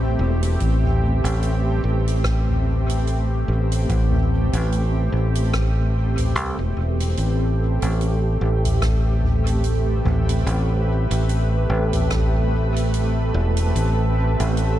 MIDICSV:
0, 0, Header, 1, 5, 480
1, 0, Start_track
1, 0, Key_signature, 0, "minor"
1, 0, Tempo, 821918
1, 352, Time_signature, 4, 2, 24, 8
1, 8639, End_track
2, 0, Start_track
2, 0, Title_t, "Synth texture"
2, 0, Program_c, 0, 99
2, 4189, Note_on_c, 0, 69, 88
2, 8639, Note_off_c, 0, 69, 0
2, 8639, End_track
3, 0, Start_track
3, 0, Title_t, "Ambient pad"
3, 0, Program_c, 1, 92
3, 0, Note_on_c, 1, 57, 83
3, 0, Note_on_c, 1, 60, 66
3, 0, Note_on_c, 1, 67, 82
3, 0, Note_on_c, 1, 71, 78
3, 0, Note_on_c, 1, 76, 66
3, 4186, Note_off_c, 1, 57, 0
3, 4190, Note_off_c, 1, 71, 0
3, 4191, Note_off_c, 1, 60, 0
3, 4192, Note_off_c, 1, 76, 0
3, 4193, Note_on_c, 1, 57, 83
3, 4436, Note_on_c, 1, 60, 90
3, 4469, Note_on_c, 1, 76, 78
3, 4907, Note_on_c, 1, 71, 83
3, 8639, Note_off_c, 1, 57, 0
3, 8639, Note_off_c, 1, 60, 0
3, 8639, Note_off_c, 1, 67, 0
3, 8639, Note_off_c, 1, 71, 0
3, 8639, Note_off_c, 1, 76, 0
3, 8639, End_track
4, 0, Start_track
4, 0, Title_t, "Fingered electric bass"
4, 0, Program_c, 2, 33
4, 0, Note_on_c, 2, 33, 91
4, 90, Note_off_c, 2, 33, 0
4, 111, Note_on_c, 2, 28, 90
4, 327, Note_off_c, 2, 28, 0
4, 353, Note_on_c, 2, 33, 96
4, 702, Note_off_c, 2, 33, 0
4, 725, Note_on_c, 2, 33, 92
4, 1051, Note_off_c, 2, 33, 0
4, 1073, Note_on_c, 2, 33, 90
4, 2013, Note_off_c, 2, 33, 0
4, 2033, Note_on_c, 2, 33, 79
4, 2248, Note_off_c, 2, 33, 0
4, 2274, Note_on_c, 2, 33, 93
4, 2623, Note_off_c, 2, 33, 0
4, 2647, Note_on_c, 2, 33, 94
4, 2972, Note_off_c, 2, 33, 0
4, 2992, Note_on_c, 2, 33, 93
4, 3711, Note_off_c, 2, 33, 0
4, 3711, Note_on_c, 2, 36, 78
4, 3831, Note_off_c, 2, 36, 0
4, 3847, Note_on_c, 2, 28, 96
4, 3939, Note_off_c, 2, 28, 0
4, 3952, Note_on_c, 2, 28, 88
4, 4167, Note_off_c, 2, 28, 0
4, 4193, Note_on_c, 2, 33, 96
4, 4542, Note_off_c, 2, 33, 0
4, 4569, Note_on_c, 2, 33, 93
4, 4893, Note_off_c, 2, 33, 0
4, 4912, Note_on_c, 2, 33, 93
4, 5852, Note_off_c, 2, 33, 0
4, 5871, Note_on_c, 2, 33, 85
4, 6087, Note_off_c, 2, 33, 0
4, 6111, Note_on_c, 2, 33, 97
4, 6461, Note_off_c, 2, 33, 0
4, 6486, Note_on_c, 2, 33, 93
4, 6811, Note_off_c, 2, 33, 0
4, 6831, Note_on_c, 2, 33, 93
4, 7771, Note_off_c, 2, 33, 0
4, 7793, Note_on_c, 2, 28, 95
4, 8007, Note_off_c, 2, 28, 0
4, 8033, Note_on_c, 2, 33, 97
4, 8382, Note_off_c, 2, 33, 0
4, 8409, Note_on_c, 2, 33, 97
4, 8639, Note_off_c, 2, 33, 0
4, 8639, End_track
5, 0, Start_track
5, 0, Title_t, "Drums"
5, 249, Note_on_c, 9, 42, 70
5, 307, Note_off_c, 9, 42, 0
5, 351, Note_on_c, 9, 36, 90
5, 352, Note_on_c, 9, 42, 54
5, 410, Note_off_c, 9, 36, 0
5, 410, Note_off_c, 9, 42, 0
5, 491, Note_on_c, 9, 45, 73
5, 550, Note_off_c, 9, 45, 0
5, 730, Note_on_c, 9, 42, 62
5, 788, Note_off_c, 9, 42, 0
5, 833, Note_on_c, 9, 42, 49
5, 891, Note_off_c, 9, 42, 0
5, 1212, Note_on_c, 9, 42, 62
5, 1271, Note_off_c, 9, 42, 0
5, 1310, Note_on_c, 9, 37, 81
5, 1313, Note_on_c, 9, 36, 94
5, 1314, Note_on_c, 9, 42, 50
5, 1368, Note_off_c, 9, 37, 0
5, 1372, Note_off_c, 9, 36, 0
5, 1373, Note_off_c, 9, 42, 0
5, 1453, Note_on_c, 9, 45, 55
5, 1511, Note_off_c, 9, 45, 0
5, 1691, Note_on_c, 9, 42, 59
5, 1749, Note_off_c, 9, 42, 0
5, 1794, Note_on_c, 9, 42, 50
5, 1852, Note_off_c, 9, 42, 0
5, 2171, Note_on_c, 9, 42, 59
5, 2229, Note_off_c, 9, 42, 0
5, 2274, Note_on_c, 9, 36, 98
5, 2274, Note_on_c, 9, 42, 55
5, 2332, Note_off_c, 9, 36, 0
5, 2333, Note_off_c, 9, 42, 0
5, 2405, Note_on_c, 9, 45, 75
5, 2464, Note_off_c, 9, 45, 0
5, 2647, Note_on_c, 9, 42, 67
5, 2705, Note_off_c, 9, 42, 0
5, 2758, Note_on_c, 9, 42, 52
5, 2817, Note_off_c, 9, 42, 0
5, 3127, Note_on_c, 9, 42, 68
5, 3185, Note_off_c, 9, 42, 0
5, 3233, Note_on_c, 9, 37, 84
5, 3234, Note_on_c, 9, 36, 97
5, 3234, Note_on_c, 9, 42, 53
5, 3291, Note_off_c, 9, 37, 0
5, 3292, Note_off_c, 9, 42, 0
5, 3293, Note_off_c, 9, 36, 0
5, 3606, Note_on_c, 9, 45, 58
5, 3608, Note_on_c, 9, 42, 61
5, 3665, Note_off_c, 9, 45, 0
5, 3666, Note_off_c, 9, 42, 0
5, 3714, Note_on_c, 9, 42, 58
5, 3773, Note_off_c, 9, 42, 0
5, 4090, Note_on_c, 9, 42, 73
5, 4148, Note_off_c, 9, 42, 0
5, 4189, Note_on_c, 9, 42, 55
5, 4248, Note_off_c, 9, 42, 0
5, 4567, Note_on_c, 9, 42, 67
5, 4626, Note_off_c, 9, 42, 0
5, 4677, Note_on_c, 9, 42, 53
5, 4735, Note_off_c, 9, 42, 0
5, 5051, Note_on_c, 9, 42, 63
5, 5055, Note_on_c, 9, 45, 75
5, 5110, Note_off_c, 9, 42, 0
5, 5114, Note_off_c, 9, 45, 0
5, 5151, Note_on_c, 9, 37, 81
5, 5153, Note_on_c, 9, 36, 101
5, 5153, Note_on_c, 9, 42, 55
5, 5209, Note_off_c, 9, 37, 0
5, 5211, Note_off_c, 9, 36, 0
5, 5211, Note_off_c, 9, 42, 0
5, 5394, Note_on_c, 9, 45, 84
5, 5452, Note_off_c, 9, 45, 0
5, 5528, Note_on_c, 9, 42, 62
5, 5587, Note_off_c, 9, 42, 0
5, 5629, Note_on_c, 9, 42, 54
5, 5687, Note_off_c, 9, 42, 0
5, 5868, Note_on_c, 9, 45, 80
5, 5926, Note_off_c, 9, 45, 0
5, 6009, Note_on_c, 9, 42, 75
5, 6068, Note_off_c, 9, 42, 0
5, 6115, Note_on_c, 9, 42, 64
5, 6173, Note_off_c, 9, 42, 0
5, 6488, Note_on_c, 9, 42, 75
5, 6547, Note_off_c, 9, 42, 0
5, 6594, Note_on_c, 9, 42, 60
5, 6653, Note_off_c, 9, 42, 0
5, 6967, Note_on_c, 9, 42, 70
5, 6967, Note_on_c, 9, 45, 74
5, 7025, Note_off_c, 9, 42, 0
5, 7025, Note_off_c, 9, 45, 0
5, 7070, Note_on_c, 9, 37, 87
5, 7070, Note_on_c, 9, 42, 56
5, 7073, Note_on_c, 9, 36, 104
5, 7128, Note_off_c, 9, 37, 0
5, 7128, Note_off_c, 9, 42, 0
5, 7131, Note_off_c, 9, 36, 0
5, 7454, Note_on_c, 9, 42, 70
5, 7512, Note_off_c, 9, 42, 0
5, 7555, Note_on_c, 9, 42, 57
5, 7613, Note_off_c, 9, 42, 0
5, 7923, Note_on_c, 9, 42, 68
5, 7982, Note_off_c, 9, 42, 0
5, 8034, Note_on_c, 9, 42, 58
5, 8092, Note_off_c, 9, 42, 0
5, 8408, Note_on_c, 9, 42, 63
5, 8466, Note_off_c, 9, 42, 0
5, 8509, Note_on_c, 9, 42, 58
5, 8567, Note_off_c, 9, 42, 0
5, 8639, End_track
0, 0, End_of_file